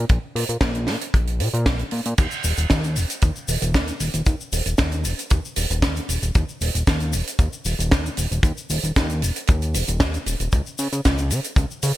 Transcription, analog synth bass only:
0.10 0.19 A#1 medium
0.35 0.44 A#2 medium
0.49 0.57 A#2 medium
0.61 0.89 A#1 loud
0.88 0.97 A#2 medium
1.14 1.41 A#1 medium
1.40 1.49 A#2 medium
1.54 1.68 A#2 medium
1.66 1.84 A#1 medium
1.92 2.01 A#2 medium
2.06 2.14 A#2 medium
2.18 2.27 D#2 medium
2.44 2.53 D#1 medium
2.58 2.66 D#1 medium
2.71 2.98 D#2 loud
2.96 3.05 D#1 medium
3.23 3.32 D#2 medium
3.48 3.57 D#1 medium
3.62 3.76 D#1 loud
3.74 3.92 D#2 medium
4.00 4.10 D#1 medium
4.14 4.22 D#1 medium
4.27 4.36 D#2 medium
4.52 4.62 D#1 medium
4.66 4.75 D#1 medium
4.79 5.06 D#2 loud
5.05 5.14 D#1 medium
5.31 5.40 D#2 medium
5.57 5.66 D#1 medium
5.71 5.84 D#1 loud
5.82 6.01 D#2 medium
6.09 6.18 D#1 medium
6.23 6.31 D#1 medium
6.35 6.45 D#2 medium
6.61 6.70 D#1 medium
6.75 6.83 D#1 medium
6.87 7.15 D#2 loud
7.14 7.23 D#1 medium
7.39 7.48 D#2 medium
7.65 7.75 D#1 medium
7.79 7.93 D#1 loud
7.92 8.10 D#2 medium
8.18 8.27 D#1 medium
8.32 8.40 D#1 medium
8.43 8.53 D#2 loud
8.70 8.79 D#1 medium
8.84 8.92 D#1 medium
8.96 9.24 D#2 loud
9.22 9.31 D#1 medium
9.49 9.76 D#2 medium
9.75 9.84 D#1 medium
9.88 10.02 D#1 medium
10.00 10.18 D#2 medium
10.26 10.36 D#1 medium
10.40 10.49 D#1 medium
10.53 10.62 C#2 medium
10.79 10.88 C#3 medium
10.93 11.01 C#3 medium
11.06 11.33 C#2 loud
11.31 11.40 C#3 medium
11.56 11.66 C#2 medium
11.83 11.92 C#3 medium

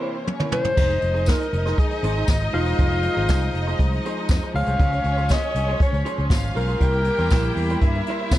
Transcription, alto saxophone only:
0.53 1.30 C5 loud
1.28 1.81 A#4 loud
1.79 2.29 G#4 medium
2.54 4.01 F4 loud
4.56 5.33 F5 loud
5.31 5.81 D#5 medium
5.83 6.28 C#5 medium
6.56 8.03 A#4 loud

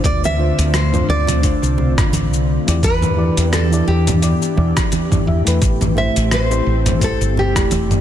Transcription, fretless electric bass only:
0.04 0.50 D2 medium
0.58 1.02 D2 loud
1.08 1.55 D2 medium
1.63 1.98 C2 medium
1.98 2.33 A1 medium
2.33 2.57 C2 medium
2.68 3.29 E2 loud
3.37 3.81 E2 medium
3.87 4.34 E2 medium
4.57 4.72 E2 medium
5.27 5.42 E2 medium
5.47 5.58 E2 medium
5.62 6.08 A1 medium
6.17 6.60 A1 loud
6.66 7.13 A1 medium
7.21 7.56 G1 medium
7.56 7.91 E1 medium
7.91 8.01 G1 medium

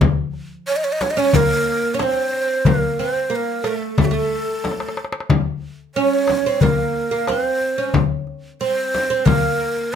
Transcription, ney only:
0.67 0.78 C#5 medium
0.76 0.86 D#5 medium
0.84 0.94 C#5 medium
0.92 1.03 D#5 medium
1.02 1.12 C#5 medium
1.11 1.20 D#5 medium
1.19 1.37 C#5 medium
1.35 1.96 A#4 medium
1.94 2.05 C#5 medium
2.03 2.69 C5 medium
2.67 3.02 A#4 medium
3.01 3.37 C5 medium
3.35 3.69 A#4 medium
3.67 3.99 A4 medium
4.01 4.06 A4 medium
4.05 4.16 F#4 medium
4.14 4.98 A4 medium
5.95 6.63 C#5 medium
6.62 7.30 A#4 medium
7.29 7.95 C5 medium
8.62 9.27 C5 medium
9.26 9.94 A#4 medium

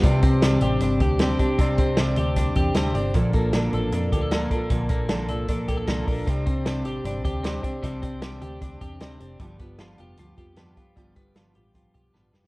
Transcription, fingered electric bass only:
0.03 0.59 C2 loud
0.62 0.78 A1 medium
0.81 0.97 G1 medium
1.01 1.34 D2 loud
1.58 2.14 C2 loud
2.17 2.50 D2 medium
2.56 2.73 E2 loud
2.75 2.92 D2 medium
2.94 3.11 G1 medium
3.14 3.70 A#1 loud
3.73 3.92 A1 medium
3.92 4.09 F2 loud
4.13 4.45 D2 loud
4.71 5.28 A#1 loud
5.28 5.68 C2 medium
5.68 5.85 D2 medium
5.87 6.04 C2 medium
6.07 6.24 A#1 medium
6.27 6.85 C2 loud
6.85 7.02 A1 medium
7.04 7.25 G1 medium
7.25 7.58 D2 medium
7.83 8.39 C2 medium
8.42 8.75 D2 medium
8.81 9.00 E2 medium
9.00 9.17 D2 medium
9.20 9.37 F1 medium
9.40 9.96 G1 loud
9.99 10.16 F1 loud
10.19 10.35 D2 medium
10.38 10.71 F2 medium
10.97 11.53 G1 loud
11.56 11.89 A1 medium
11.94 12.11 B1 medium
12.14 12.31 A1 medium
12.33 12.47 F1 medium

